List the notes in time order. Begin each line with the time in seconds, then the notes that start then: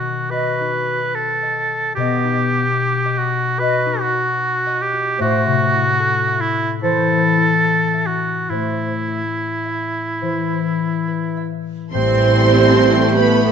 Already playing: B2 D#3 D#4 F#4 D#5 B5
0.31 F#4 B4 D#5
0.61 D#4
1.15 A4
1.43 D#5
1.95 B2 B3 G4 D#5
2.24 D#4
3.05 D#5
3.18 F#4
3.59 F#4 B4 D#5
3.86 D#4
4.00 F#4
4.66 D#5
4.82 G4
4.93 F#4
5.19 A2 A3 F#4 C5
5.46 C3
5.74 E4
6.00 A4
6.27 E5
6.41 E4
6.82 E3 E4 A4 C5
7.11 A3
7.38 E4
7.93 E5
8.07 F#4
8.50 A2 A3 E4 C5
9.08 E4
9.65 E5
10.22 E3 E4 C5
10.79 E4
11.08 B4
11.37 E5
11.92 A1 A2 E3 G3 A3 C4 E4 G4 A4 C5 G5 C6
12.15 G3
12.35 G4
12.56 A4
12.76 E5
12.96 G5
13.15 B3 B4 E5 B5
13.37 G4